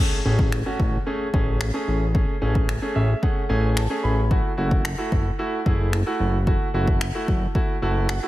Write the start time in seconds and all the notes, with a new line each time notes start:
0.00 A3 C#4 G#4, impact
0.25 A1 A3 C#4 G#4
0.39 kick
0.52 finger snap
0.66 A3 C#4 F#4
0.80 A1, kick
1.06 A3 C#4 G#4
1.33 A1 A3 C#4 G#4, kick
1.61 finger snap
1.74 A3 C#4 G#4
1.88 A1
2.14 A3 C#4 G#4, kick
2.41 A1 A3 C#4 G#4
2.55 kick
2.69 finger snap
2.82 A3 C#4 G#4
2.96 A1 E5
3.22 A3 C#4 G#4 F#5, kick
3.49 A1 A3 C#4 G#4 G#5
3.77 A5, finger snap
3.90 A3 C#4 G#4
4.03 A1 B5
4.31 A3 E4 F#4, kick
4.57 F#1 A3 E4 F#4
4.71 kick
4.85 finger snap
4.98 A3 E4 F#4
5.12 F#1, kick
5.39 A3 E4 F#4
5.66 F#1 A3 E4 G#4, kick
5.93 finger snap
6.06 A3 E4 F#4
6.20 F#1
6.47 A3 E4 F#4, kick
6.74 F#1 A3 E4 F#4
6.88 kick
7.01 finger snap
7.15 A3 E4 F#4
7.28 F#1, kick
7.55 A3 E4 F#4, kick
7.82 F#1 A3 E4 F#4 A5
8.09 F#5, finger snap
8.23 A3 E4 F#4